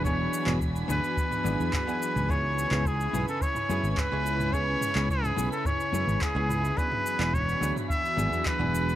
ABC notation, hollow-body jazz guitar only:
X:1
M:4/4
L:1/16
Q:1/4=107
K:C#phr
V:1 name="Hollow-body jazz guitar"
[F,B,DEG]3 [F,B,DEG] z2 [F,B,DEG] z3 [F,B,DEG]3 [F,B,DEG]3 | [G,B,CEG]3 [G,B,CEG] z2 [G,B,CEG] z3 [G,B,CEG]3 [G,B,CEG]3 | [G,B,CEG]3 [G,B,CEG] z2 [G,B,CEG] z3 [G,B,CEG]3 [G,B,CEG]3 | [F,B,DEG]3 [F,B,DEG] z2 [F,B,DEG] z3 [F,B,DEG]3 [F,B,DEG]3 |]